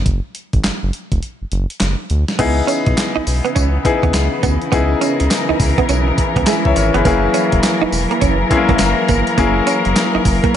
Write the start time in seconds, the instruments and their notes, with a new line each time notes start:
0.06 analog synth bass F#1, kick, closed hi-hat
0.35 closed hi-hat
0.53 analog synth bass G#1, kick, closed hi-hat
0.64 analog synth bass F#1, snare, clap, closed hi-hat
0.83 analog synth bass F#1
0.93 closed hi-hat
1.12 analog synth bass E1, kick, closed hi-hat
1.23 closed hi-hat
1.42 analog synth bass F#1
1.52 analog synth bass F#1, closed hi-hat
1.70 closed hi-hat
1.80 analog synth bass F#1, snare, clap, closed hi-hat
2.10 analog synth bass D2, closed hi-hat
2.28 snare, closed hi-hat
2.39 analog synth bass C#2, string section C#3 E3 B3, grand piano B3 D#4 E4 G#4, clean electric guitar B3, kick, closed hi-hat, crash, tambourine
2.67 clean electric guitar C#4, closed hi-hat, tambourine
2.86 analog synth bass B1, muted clean electric guitar stroke, kick, closed hi-hat
2.97 snare, clap, closed hi-hat, tambourine
3.16 analog synth bass B1, clean electric guitar D#4
3.27 analog synth bass B1, muted clean electric guitar stroke, open hi-hat, tambourine
3.45 clean electric guitar B3, closed hi-hat
3.56 analog synth bass C#2, clean electric guitar C#4, kick, closed hi-hat, tambourine
3.85 grand piano B3 D#4 E4 G#4, muted clean electric guitar stroke, kick, closed hi-hat
4.03 analog synth bass D#2, clean electric guitar B3, kick, closed hi-hat
4.14 analog synth bass C#2, snare, clap, closed hi-hat, tambourine
4.43 analog synth bass D2, clean electric guitar B3, kick, closed hi-hat, tambourine
4.62 closed hi-hat
4.72 analog synth bass C#2, clean electric guitar B3, grand piano B3 D#4 E4 G#4, string section A#4, kick, closed hi-hat, tambourine
5.01 clean electric guitar C#4, closed hi-hat, tambourine
5.20 analog synth bass C#2, muted clean electric guitar stroke, closed hi-hat
5.31 snare, clap, closed hi-hat, tambourine
5.49 analog synth bass C#2, clean electric guitar D#4
5.60 analog synth bass C#2, muted clean electric guitar stroke, kick, open hi-hat, tambourine
5.78 clean electric guitar B3, kick, closed hi-hat
5.89 analog synth bass B1, clean electric guitar C#4, closed hi-hat, tambourine
6.08 muted clean electric guitar stroke
6.18 kick, closed hi-hat
6.36 analog synth bass C#2, clean electric guitar B3, kick, closed hi-hat
6.47 clean electric guitar G#3, grand piano E5 G#5, snare, clap, closed hi-hat, tambourine
6.65 analog synth bass C#2, grand piano C#5 E5, kick
6.76 analog synth bass G#1, grand piano A#4 C#5, muted clean electric guitar stroke, closed hi-hat, tambourine
6.94 analog synth bass G1, clean electric guitar B3, grand piano G#4 B4, closed hi-hat
7.05 analog synth bass F#1, string section F#3 A#4, clean electric guitar A#3, grand piano A#3 C#4 E4 G#4, kick, closed hi-hat, tambourine
7.34 clean electric guitar C#4, closed hi-hat, tambourine
7.52 analog synth bass E1, muted clean electric guitar stroke, kick, closed hi-hat
7.63 snare, clap, closed hi-hat, tambourine
7.82 analog synth bass E1, clean electric guitar D#4
7.92 analog synth bass E1, muted clean electric guitar stroke, open hi-hat, tambourine
8.11 clean electric guitar A#3, closed hi-hat
8.21 analog synth bass F#1, clean electric guitar C#4, kick, closed hi-hat, tambourine
8.50 grand piano G#3 C#4 E4 G#4, muted clean electric guitar stroke, kick, closed hi-hat
8.57 grand piano A#3
8.69 analog synth bass G#1, clean electric guitar A#3, kick, closed hi-hat
8.79 analog synth bass F#1, snare, clap, closed hi-hat, tambourine
9.09 analog synth bass G1, clean electric guitar A#3, kick, closed hi-hat, tambourine
9.27 closed hi-hat
9.38 analog synth bass F#1, grand piano A#3 C#4 E4 G#4, clean electric guitar A#3, kick, closed hi-hat, tambourine
9.67 clean electric guitar C#4, closed hi-hat, tambourine
9.85 analog synth bass F#1, muted clean electric guitar stroke, closed hi-hat
9.96 snare, clap, closed hi-hat, tambourine
10.15 analog synth bass F#1, clean electric guitar D#4
10.25 analog synth bass F#1, muted clean electric guitar stroke, kick, open hi-hat, tambourine
10.44 clean electric guitar A#3, kick, closed hi-hat